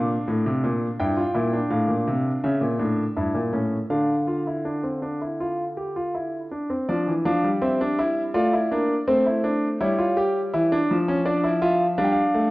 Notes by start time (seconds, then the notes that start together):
Already playing: A#2 D4 F5
0.28 A2
0.46 C3
0.64 A#2
1.00 G2 E4 G5
1.17 F4
1.35 A#2 E4
1.53 D4
1.70 A2 F5
1.88 A#2
2.08 C3
2.44 C#3 C#4 E5
2.61 A#2
2.79 A2 D4
3.17 G2 E4
3.35 A#2
3.53 A2 C#4
3.90 D3 D4 F5
4.27 F4
4.47 E4
4.65 D4
4.83 C4
5.02 D4
5.22 E4
5.41 F4
5.77 G4
5.96 F4
6.15 E4
6.52 D4
6.70 C4
6.89 F3 D4 D5
7.07 E3
7.25 F3 D4 F5
7.44 G3
7.62 C4 E5
7.81 D4
7.98 E4
8.34 A3 F4 D5
8.53 E4
8.71 A#3 D4
9.08 A3 C4 C5
9.26 E4
9.44 D4
9.81 G3 E4 C#5
9.99 F4
10.17 G4
10.54 E3 E4
10.72 D4
10.91 F3
11.08 C#4
11.25 D4 D5
11.44 E4
11.62 F4 E5
11.98 G3 D4 F5
12.04 G5
12.12 F5
12.34 A3